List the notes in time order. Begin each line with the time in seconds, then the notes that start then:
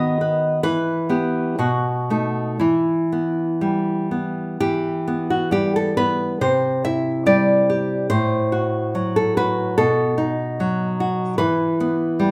Already playing: D#3 B3 F#4 D#5
0.21 B4
0.63 E3 B4
1.09 B3 G4
1.59 B2 F#4
2.10 A3 D#4
2.60 E3 E4
3.12 B3
3.61 G3
4.11 B3
4.60 E3 G4
5.08 B3
5.30 F#4
5.51 G3 G4
5.76 A4
5.97 B3 B4
6.41 C3 C5
6.84 E4 E5
7.26 G3 D5
7.70 G4
8.10 A2 C5
8.52 F#4
8.95 F#3
9.16 A4
9.37 F#4 B4
9.78 B2 A4
10.18 D#4
10.60 F#3
11.00 F#4
11.38 E3 B4
11.80 B3
12.20 G3